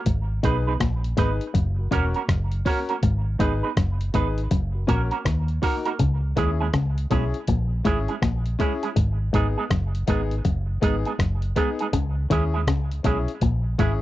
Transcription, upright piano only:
0.43 D#4 G#4 B4
1.17 D#4 G#4 B4
1.78 F#4 A#4
1.91 C#4 F#4 A#4
2.65 C#4 F#4 A#4
3.39 D#4 G#4 B4
4.14 D#4 G#4 B4
4.74 F#4 A#4
4.87 C#4 F#4 A#4
5.62 D#4 F#4 A#4
6.36 C#4 E4 G#4
7.11 C#4 E4 G#4
7.85 C#4 E4 G#4
8.59 C#4 E4 G#4
9.33 B3 D#4 G#4
10.07 B3 D#4 G#4
10.81 B3 D#4 G#4
11.56 B3 D#4 G#4
12.30 C#4 E4 G#4
13.04 C#4 E4 G#4
13.78 C#4 E4 G#4

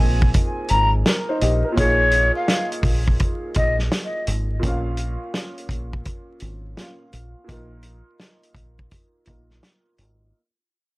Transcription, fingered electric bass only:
Already playing: A#1
0.71 G#1
1.42 A#1
1.77 A#1
2.83 A#1
3.56 A#1
4.28 G#1
4.63 A#1
5.69 A#1
6.42 G#1
7.13 A#1
7.49 A#1
8.55 A#1
9.27 A#1
9.99 G#1

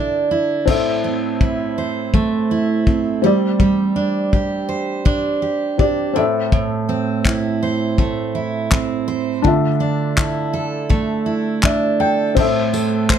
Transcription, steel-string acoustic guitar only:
Already playing: D3 D4 E4 A4
0.31 E4
0.68 A2
1.04 C4
1.41 E4
1.78 C5
2.14 A3
2.51 E4
2.87 C4
3.24 G3
3.60 G3
3.96 D4
4.33 G4
4.69 C5
5.05 D4
5.42 G4
5.80 D4
6.16 A2
6.53 A2
6.89 C4
7.26 E4
7.63 C5
7.99 A3
8.35 E4
8.71 C4
9.08 C5
9.44 D3
9.80 D4
10.17 E4
10.53 A4
10.89 A3
11.26 E4
11.64 D4
12.00 A4
12.36 A2 C5
12.73 A4
13.10 C5

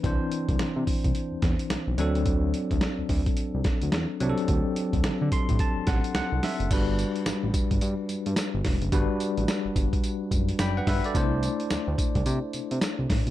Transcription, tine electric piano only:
0.03 E3 C4 D4 C5
1.98 F#3 C4 D4 A4
4.21 F#3 C4 D4 G4
4.29 A4
5.33 C6
5.60 A5
5.88 F#5
6.16 F#5
6.44 E5
6.71 G3 D4 F#4 B4
8.92 G3 D4 F#4 B4
10.60 D5 G5 B5
10.77 B4 F#5
10.88 B4 E5
11.05 A4 D5
11.14 A3 D4 E4 C5

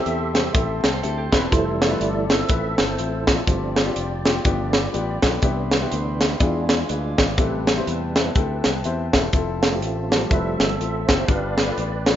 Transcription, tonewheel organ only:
Already playing: G4 A4 E5
0.34 C3 G3 B3
1.51 E3 G3 A3 E4 A4 C5
1.81 A4 D5
2.31 C4 A4 E5
2.79 E4 A4 C5
3.28 F4 D5
3.47 F3 A3 C4
4.45 F3 A3 B3
5.43 E3 B3 D4
6.40 G#3 D4 F4
7.37 C3 G3 B4
8.15 C3 G3 B3
9.62 A3 C4 F4
10.09 F3 G3 A3 G4
10.30 C4 A4 E5
11.07 C5
11.26 B4 D5 F5
12.05 F3 A3 B3

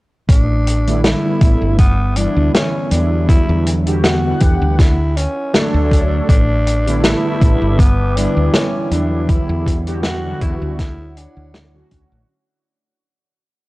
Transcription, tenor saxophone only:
0.29 D4
1.04 E4
1.79 B3
2.17 D4
2.54 C#4
2.92 D4
3.29 E4
4.04 F#4
4.41 G4
4.79 E4
5.17 C#4
5.54 D4
6.29 D4
7.04 E4
7.79 B3
8.17 D4
8.54 C#4
8.92 D4
9.30 E4
10.05 F#4
10.42 E4
10.80 E4
11.17 D4

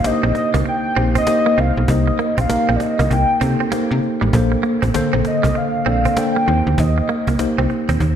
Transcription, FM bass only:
0.24 A#1
0.54 C2
0.97 A#1
1.58 C2
1.77 B1
1.88 C2
2.38 A#1
2.50 A#1
2.69 A#1
3.00 C2
3.11 C2
3.41 C3
3.91 C3
4.22 A1
4.33 A#1
4.83 A1
4.95 A#1
5.14 A#1
5.44 C2
5.86 A#1
6.48 D#2
6.67 D2
6.78 D#2
7.28 C2
7.58 C2
7.89 D#2
8.00 D#2

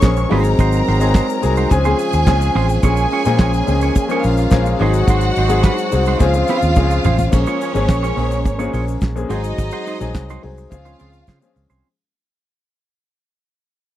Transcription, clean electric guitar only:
0.03 muted clean electric guitar stroke
0.17 muted clean electric guitar stroke
0.31 G#3 D#4 F#4 C5
0.45 muted clean electric guitar stroke
0.59 G#3 D#4 F#4 C5
0.87 G#3 D#4 F#4 C5
1.01 G#3 D#4 F#4 C5
1.15 G#3 D#4 F#4 C5
1.29 muted clean electric guitar stroke
1.43 muted clean electric guitar stroke
1.57 G#3 D#4 F#4 C5
1.85 C4 F4 G#4 C5
2.14 muted clean electric guitar stroke
2.28 muted clean electric guitar stroke
2.41 muted clean electric guitar stroke
2.55 C4 F4 G#4 C5
2.69 muted clean electric guitar stroke
2.83 C#4 F4 G#4 C#5
3.12 C#4 F4 G#4 C#5
3.25 C#4 F4 G#4 C#5
3.40 C#4 F4 G#4 C#5
3.54 muted clean electric guitar stroke
3.68 muted clean electric guitar stroke
3.83 C#4 F4 G#4 C#5
3.97 muted clean electric guitar stroke
4.11 C#4 F4 G#4 C#5
4.39 muted clean electric guitar stroke
4.53 muted clean electric guitar stroke
4.67 muted clean electric guitar stroke
4.81 G#3 D#4 F#4 C5
4.95 muted clean electric guitar stroke
5.09 G#3 D#4 F#4 C5
5.37 G#3 D#4 F#4 C5
5.51 G#3 D#4 F#4 C5
5.65 G#3 D#4 F#4 C5
5.79 muted clean electric guitar stroke
5.93 muted clean electric guitar stroke
6.08 G#3 D#4 F#4 C5
6.35 muted clean electric guitar stroke
6.49 C4 F4 G#4 C5
6.63 muted clean electric guitar stroke
6.77 muted clean electric guitar stroke
6.91 muted clean electric guitar stroke
7.05 C4 F4 G#4 C5
7.20 muted clean electric guitar stroke
7.33 muted clean electric guitar stroke
7.47 C#4 F4 G#4 C#5
7.61 C#4 F4 G#4 C#5
7.75 muted clean electric guitar stroke
7.90 muted clean electric guitar stroke
8.03 C#4 F4 G#4 C#5
8.17 muted clean electric guitar stroke
8.31 muted clean electric guitar stroke
8.45 muted clean electric guitar stroke
8.59 C#4 F4 G#4 C#5
8.73 C#4 F4 G#4 C#5
8.87 muted clean electric guitar stroke
9.02 muted clean electric guitar stroke
9.16 muted clean electric guitar stroke
9.30 G#3 D#4 F#4 C5
9.45 muted clean electric guitar stroke
9.58 muted clean electric guitar stroke
9.73 G#3 D#4 F#4 C5
9.87 G#3 D#4 F#4 C5
10.01 muted clean electric guitar stroke
10.16 muted clean electric guitar stroke
10.30 G#3 D#4 F#4 C5
10.58 muted clean electric guitar stroke
10.71 muted clean electric guitar stroke
10.85 C4 F4 G#4 C5
11.00 C4 F4 G#4 C5
11.13 muted clean electric guitar stroke
11.28 C4 F4 G#4 C5
11.41 muted clean electric guitar stroke
11.56 muted clean electric guitar stroke
11.70 C4 F4 G#4 C5

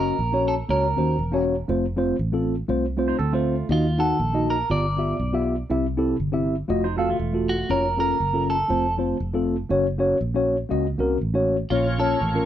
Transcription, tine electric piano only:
Already playing: A#3 C#4 F#4
0.00 D#5
0.32 A#3 C#4 F#4 C#5
0.68 A#3 C#4 F#4 C#5
0.96 A#3 C#4 F#4 C5
1.32 A#3 C#4 F#4 C#5
1.68 A3 C4 F4 C5
1.97 A3 C4 F4 C5
2.32 A3 C4 F4 A4
2.68 A3 C4 F4 C5
2.97 A3 C4 F4 C5
3.32 A3 C4 F4 C5
3.69 D#3 A#3 D#4 F#4 D#5
3.98 A#3 D#4 F#4 F#5
4.33 A#3 D#4 F#4 D#5
4.70 G2 B3 F4 G4 D5
4.97 B3 F4 G4 E5
5.33 B3 F4 G4 E5
5.70 C3 C4 E4 G4 E5
5.97 C4 E4 G4 A4
6.32 C4 E4 G4 E5
6.68 A3 F4 F#4 D#5
6.97 A3 F4 F#4 F5
7.33 A3 F4 F#4 A4
7.69 A#3 C#4 F4 C#5
7.97 A#3 C#4 F4 A4
8.33 A#3 C#4 F4 A4
8.68 A3 C4 F4 C5
8.97 A3 C4 F4 C5
9.33 A3 C4 F4 A4
9.69 A#3 C#4 F#4 C#5
9.98 A#3 C#4 F#4 C#5
10.34 A#3 C#4 F#4 C#5
10.69 A#3 C#4 F#4 D#5
10.98 A#3 C#4 F#4 A#4
11.34 A#3 C#4 F#4 C#5
11.70 A#2 A#3 C#4 F4 C#5
11.99 A#3 C#4 F4 C#5
12.34 A#3 C#4 F4 A#4

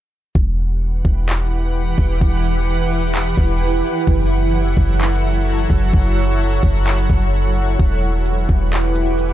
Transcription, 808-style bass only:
0.35 E1
1.05 E1
1.98 E1
2.21 E1
3.38 E1
4.07 F#1
4.77 F#1
5.70 F#1
5.94 F#1
6.63 F#1
7.10 F#1
7.79 E1
8.49 E1

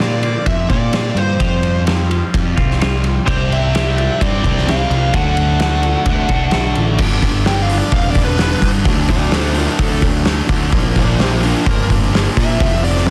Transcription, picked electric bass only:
Already playing: A#2
0.47 F2
0.70 A#2
1.15 G2
1.41 F2
2.34 F2
2.58 C2
3.27 C2
4.22 G2
4.44 C2
4.90 C2
5.13 D2
6.06 D2
6.29 C2
6.54 B1
6.77 A1
6.99 G1
7.92 E1
8.62 G2
8.85 D2
9.79 D2
10.49 D2
10.72 A#1
11.66 G1
12.37 A#2
12.60 F1

